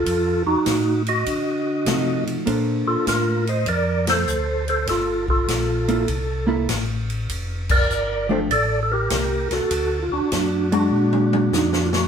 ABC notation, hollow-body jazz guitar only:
X:1
M:4/4
L:1/8
Q:"Swing" 1/4=99
K:Fmix
V:1 name="Hollow-body jazz guitar"
z6 [F,A,E_G]2 | [B,DAc]3 z4 z | z3 [B,=EA] z [B,EA] z2 | z3 [F,A,DG] z4 |
z3 [_A,D^F]3 z2 |]